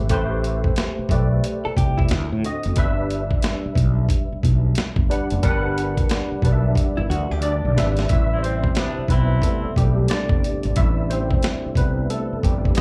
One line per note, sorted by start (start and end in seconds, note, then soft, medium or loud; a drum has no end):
0.00 0.11 G#1 medium
0.00 0.10 A3 medium
0.00 0.10 G4 medium
0.00 0.12 B4 medium
0.00 0.12 C5 medium
0.09 0.70 A1 loud
0.09 0.90 A3 medium
0.09 0.90 G4 medium
0.09 0.91 B4 medium
0.09 0.91 C5 loud
0.09 kick loud
0.09 closed hi-hat medium
0.44 closed hi-hat medium
0.64 kick medium
0.76 snare loud
0.76 closed hi-hat medium
0.99 muted fretless electric bass stroke soft
1.09 1.39 B1 medium
1.09 2.10 A3 medium
1.09 2.10 G4 medium
1.09 2.11 B4 medium
1.09 2.11 D5 medium
1.09 kick medium
1.09 closed hi-hat medium
1.44 closed hi-hat medium
1.65 1.76 A4 medium
1.65 muted fretless electric bass stroke soft
1.77 2.07 C2 medium
1.77 1.97 G4 medium
1.77 kick medium
1.77 closed hi-hat medium
1.98 2.29 E4 medium
1.98 kick medium
2.09 2.29 D2 medium
2.09 snare loud
2.09 closed hi-hat medium
2.32 2.43 A2 medium
2.43 2.71 D3 medium
2.43 2.72 C4 medium
2.43 2.72 F#4 medium
2.43 2.72 D#5 medium
2.43 closed hi-hat medium
2.63 2.76 F#1 medium
2.63 closed hi-hat soft
2.76 3.36 G1 medium
2.76 3.80 G3 loud
2.76 3.81 D4 medium
2.76 3.81 B4 medium
2.76 3.81 E5 loud
2.76 kick loud
2.76 closed hi-hat medium
3.10 closed hi-hat medium
3.31 kick medium
3.42 snare loud
3.42 closed hi-hat medium
3.66 muted fretless electric bass stroke soft
3.75 4.06 B1 medium
3.75 kick medium
3.75 closed hi-hat medium
4.09 kick medium
4.09 closed hi-hat medium
4.32 muted fretless electric bass stroke soft
4.43 4.73 B1 medium
4.43 kick medium
4.43 closed hi-hat medium
4.75 muted fretless electric bass stroke soft
4.75 snare loud
4.75 closed hi-hat medium
4.96 5.08 G1 medium
4.96 kick loud
5.10 5.37 G3 medium
5.10 5.38 D4 medium
5.10 5.38 B4 medium
5.10 5.38 F#5 medium
5.10 closed hi-hat medium
5.30 5.42 F#1 medium
5.30 closed hi-hat soft
5.43 6.03 G1 medium
5.43 6.23 G3 medium
5.43 6.23 D4 medium
5.43 5.52 A#4 medium
5.43 6.24 F#5 loud
5.43 kick loud
5.43 closed hi-hat medium
5.51 6.27 B4 medium
5.78 closed hi-hat medium
5.97 kick medium
5.97 closed hi-hat soft
6.09 snare loud
6.09 closed hi-hat medium
6.32 muted fretless electric bass stroke soft
6.42 6.73 B1 medium
6.42 7.47 G3 medium
6.42 7.44 D4 medium
6.42 7.47 B4 medium
6.42 6.53 D5 medium
6.42 kick medium
6.42 closed hi-hat medium
6.52 7.51 E5 medium
6.75 kick medium
6.75 closed hi-hat medium
6.97 7.09 G1 medium
6.97 7.09 E4 medium
7.10 7.29 D2 medium
7.10 7.31 F#4 medium
7.10 closed hi-hat medium
7.31 7.61 D2 medium
7.31 8.06 G4 medium
7.42 7.76 D4 medium
7.42 8.06 D5 medium
7.42 closed hi-hat medium
7.65 7.76 B1 medium
7.76 8.06 G#1 medium
7.76 8.04 G3 medium
7.76 8.05 D4 medium
7.76 8.05 B4 medium
7.76 8.05 E5 medium
7.76 snare medium
7.76 closed hi-hat medium
7.97 snare medium
7.97 closed hi-hat soft
8.09 8.69 A1 medium
8.09 9.06 C3 soft
8.09 9.07 G3 soft
8.09 8.37 E4 medium
8.09 9.07 B4 medium
8.09 8.39 E5 medium
8.09 kick loud
8.09 closed hi-hat medium
8.31 8.41 E3 medium
8.31 8.41 C4 medium
8.31 8.41 E4 medium
8.38 8.43 D5 medium
8.43 8.70 E3 medium
8.43 8.70 G3 medium
8.43 8.70 C4 medium
8.43 9.07 C4 medium
8.43 9.12 C5 medium
8.43 closed hi-hat medium
8.64 kick medium
8.75 9.03 G3 medium
8.75 9.03 B3 medium
8.75 9.03 D4 medium
8.75 snare loud
8.75 closed hi-hat medium
8.99 muted fretless electric bass stroke soft
9.08 9.39 B1 medium
9.08 9.73 E3 medium
9.08 9.73 C4 medium
9.08 9.73 E4 medium
9.08 9.41 B4 medium
9.08 kick medium
9.08 closed hi-hat medium
9.12 9.42 B3 medium
9.42 9.74 C3 soft
9.42 9.74 G3 soft
9.42 9.76 A3 medium
9.42 9.74 B3 soft
9.42 9.77 A4 medium
9.42 kick medium
9.42 closed hi-hat medium
9.65 muted fretless electric bass stroke soft
9.76 10.06 B1 medium
9.76 10.09 G3 medium
9.76 10.11 G4 medium
9.76 kick medium
9.76 closed hi-hat medium
10.08 10.73 D5 loud
10.08 muted fretless electric bass stroke soft
10.08 snare loud
10.08 closed hi-hat medium
10.13 10.74 D4 medium
10.29 10.41 G1 medium
10.29 kick loud
10.44 closed hi-hat medium
10.63 10.76 G#1 medium
10.63 closed hi-hat soft
10.76 11.36 A1 loud
10.76 11.09 E4 medium
10.76 11.08 E5 loud
10.76 kick loud
10.76 closed hi-hat medium
11.10 11.74 C4 medium
11.10 11.79 C5 medium
11.10 closed hi-hat medium
11.31 kick medium
11.43 snare loud
11.43 closed hi-hat medium
11.66 muted fretless electric bass stroke soft
11.75 12.06 C2 medium
11.75 12.25 C3 medium
11.75 12.25 G3 soft
11.75 12.11 B4 medium
11.75 kick medium
11.75 closed hi-hat medium
11.79 12.26 B3 medium
12.10 12.42 A3 medium
12.10 12.44 A4 medium
12.10 closed hi-hat medium
12.33 muted fretless electric bass stroke soft
12.43 12.73 G1 medium
12.43 12.76 G3 medium
12.43 12.78 G4 medium
12.43 kick medium
12.43 closed hi-hat medium
12.65 kick medium
12.75 12.81 D2 medium
12.75 12.81 D#5 loud
12.75 snare loud
12.75 closed hi-hat medium